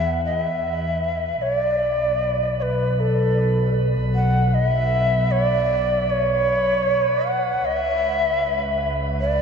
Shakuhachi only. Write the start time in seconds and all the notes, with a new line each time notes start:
Already playing: E5
0.25 D#5
0.41 E5
1.41 C#5
1.56 D5
2.59 B4 C#5
3.00 A4
4.15 F#5
4.54 D#5
4.66 E5
5.31 C#5
5.42 D5
6.10 C#5
7.26 F#5
7.65 E5
9.20 D5